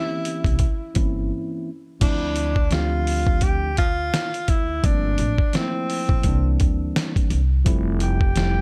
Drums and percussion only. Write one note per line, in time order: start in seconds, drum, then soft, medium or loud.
0.25 closed hi-hat medium
0.44 kick medium
0.44 closed hi-hat soft
0.59 kick medium
0.59 closed hi-hat medium
0.95 kick medium
0.95 closed hi-hat medium
2.01 kick loud
2.01 closed hi-hat medium
2.01 crash medium
2.36 closed hi-hat medium
2.56 kick medium
2.71 snare loud
2.71 closed hi-hat medium
3.07 open hi-hat medium
3.27 kick loud
3.41 kick medium
3.41 closed hi-hat medium
3.77 kick medium
3.77 closed hi-hat medium
4.14 snare loud
4.14 closed hi-hat medium
4.34 closed hi-hat soft
4.48 kick medium
4.48 closed hi-hat medium
4.84 kick loud
4.84 closed hi-hat loud
5.18 closed hi-hat medium
5.38 kick medium
5.53 snare loud
5.53 closed hi-hat medium
5.90 open hi-hat medium
6.09 kick medium
6.23 kick medium
6.23 closed hi-hat medium
6.60 kick medium
6.60 closed hi-hat medium
6.96 snare loud
6.96 closed hi-hat medium
7.16 kick loud
7.16 closed hi-hat soft
7.30 closed hi-hat medium
7.66 kick loud
7.66 closed hi-hat medium
8.00 closed hi-hat medium
8.21 kick medium
8.36 snare loud
8.36 closed hi-hat medium